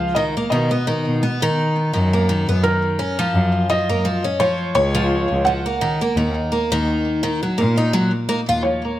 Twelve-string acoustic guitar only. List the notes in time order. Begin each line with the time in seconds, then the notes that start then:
Already playing: F3
0.16 D#3
0.37 A#3
0.52 D#3
0.71 B3
0.87 D#3
1.23 B3
1.42 D#3
1.93 D#3
2.13 A#3
2.29 D#3
2.49 B3
2.63 D#3
2.99 C#4
3.19 F3
3.69 F3
3.89 A#3
4.05 F3
4.24 C#4
4.40 F3
4.75 C#4
4.95 F3
5.47 F3
5.66 A#3
5.81 D#3
6.01 A#3
6.17 D#3
6.52 A#3
6.72 D#3
7.23 D#3
7.43 F#3
7.58 A#3
7.78 D#4
7.93 F#3
8.29 A#3
8.49 F4
8.65 F3
8.85 A#3